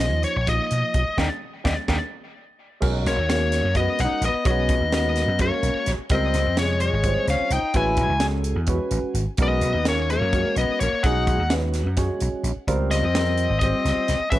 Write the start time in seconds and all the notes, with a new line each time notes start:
Already playing: A#1 D#5
0.00 F3 A#3 D#4 F4
0.13 D#2
0.23 C#5, closed hi-hat
0.36 A#1 C#5
0.47 F3 A#3 D#4 F4 D#5, kick, closed hi-hat
0.71 B2, closed hi-hat
0.94 B1, kick, closed hi-hat
1.08 muted slap bass stroke
1.17 D#2 A#3 D4 D#4 D5 D#5 G5, kick, snare
1.64 D#2 A#3 D4 D#4 D5 D#5 G5, kick, snare
1.88 D#2 A#3 D4 D#4 D5 D#5 G5, kick, snare
2.80 B1 G#3 C#4 F#4 A#4, kick, crash
3.06 B1 A#3 C#5, snare, closed hi-hat
3.18 D#2
3.28 G#3 A#3 C#4 F#4 A#4 C#5, snare, closed hi-hat
3.52 snare, closed hi-hat
3.65 F#2
3.75 G#3 B3 C#4 F#4 A#4 D#5, kick, closed hi-hat
3.99 B1 F#5, snare, closed hi-hat
4.04 D#4
4.11 muted slap bass stroke
4.21 A#1, closed hi-hat
4.25 B3 D#5
4.34 muted slap bass stroke
4.45 B1 G#3 C#4 F#4 C#5 D#5, kick, closed hi-hat
4.50 B3
4.69 B1, kick, closed hi-hat
4.80 D#2
4.92 G#3 C#4 F#4 A#4 D#5, snare, closed hi-hat
4.96 B3
5.16 snare, closed hi-hat
5.28 F#2
5.39 G#3 A#3 C#4 F#4 A#4 C#5, kick, closed hi-hat
5.63 B1, closed hi-hat
5.74 muted slap bass stroke
5.86 A#1, snare, closed hi-hat
5.98 muted slap bass stroke
6.10 C#2 G3 C4 F4 A#4 D#5, kick, closed hi-hat
6.34 C#2, snare, closed hi-hat
6.46 F2
6.57 C3 G3 G#3 F4 C#5, snare, closed hi-hat
6.80 G#3 C#5, closed hi-hat
6.93 G#1
7.04 G3 C4 F4 C5, kick, closed hi-hat
7.27 C#2 C#4 F5, snare, closed hi-hat
7.40 muted slap bass stroke
7.50 C2 D#4 G5, closed hi-hat
7.62 muted slap bass stroke
7.74 A1 G#3 C#4 E4 F#4 B4 G#5, kick, closed hi-hat
7.97 A1, kick, closed hi-hat
8.09 C#2
8.20 C#4 F#4 G#4 A4, snare, closed hi-hat
8.44 closed hi-hat
8.56 E2
8.67 G#3 C#4 F#4 B4, kick, closed hi-hat
8.91 A1, closed hi-hat
9.03 muted slap bass stroke
9.14 G#1, closed hi-hat
9.28 muted slap bass stroke
9.37 B1 G#3 B3 C#4 F#4 A#4, kick, closed hi-hat
9.42 D#5
9.61 B1, closed hi-hat
9.74 D#2
9.85 G#3 A#3 C#4 F#4 A#4 C#5, snare, closed hi-hat
10.10 A#3 C#5, closed hi-hat
10.21 F#2
10.33 G#3 C#4 F#4 A#4, kick, closed hi-hat
10.56 B1 B3 D#5, closed hi-hat
10.68 muted slap bass stroke
10.80 A#1 A#3 C#5, closed hi-hat
10.93 muted slap bass stroke
11.03 B1 G#3 C#4 D#4 F#4 G#4 F#5, kick, closed hi-hat
11.27 B1, kick, closed hi-hat
11.39 D#2
11.50 G#3 C#4 F#4 B4, snare, closed hi-hat
11.74 snare, closed hi-hat
11.86 F#2
11.96 G#3 C#4 F#4 C#5, kick, snare, closed hi-hat
12.21 B1, closed hi-hat
12.33 muted slap bass stroke
12.43 A#1, closed hi-hat
12.56 muted slap bass stroke
12.67 C#2 G3 C4 F4 A#4, kick, closed hi-hat
12.90 C#2 C4 D#5, snare, closed hi-hat
13.03 F2
13.14 G3 C4 F4 A#4, snare, closed hi-hat
13.38 closed hi-hat
13.50 G#1
13.59 G3 C4 D#5, kick, closed hi-hat
13.64 F4 C5
13.85 C#2, snare, closed hi-hat
13.96 muted slap bass stroke
14.08 C2, snare, closed hi-hat
14.19 muted slap bass stroke
14.30 A1 G#3 C#4 F#4 B4 E5, kick, closed hi-hat